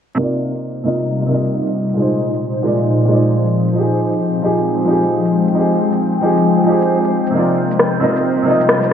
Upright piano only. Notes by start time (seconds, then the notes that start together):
0.15 C3 A#3
0.19 D#4 F4 D5
0.84 C3 A#3 D#4 F4
0.88 D#5
1.26 C3 A#3 D#4
1.32 F4 D#5
1.94 A#2 G#3
1.99 D#4 C5
2.63 A#2 G#3 D#4 D5
3.05 A#2 G#3
3.11 D#4 D5
3.73 F3 D#4
3.78 G4 G#4
4.42 F3 D#4 G4 G#4
4.85 F3 D#4
4.90 G4 G#4
5.52 F3 D#4
5.57 G4 G#4
6.21 F3 D#4 G4
6.25 G#4
6.64 F3 D#4
6.69 G4 G#4
7.31 C3 A#3
7.35 D#4 F4
7.39 D5
8.00 C3 A#3 D#4 F4 D#5
8.43 C3 A#3
8.47 D#4 F4 D#5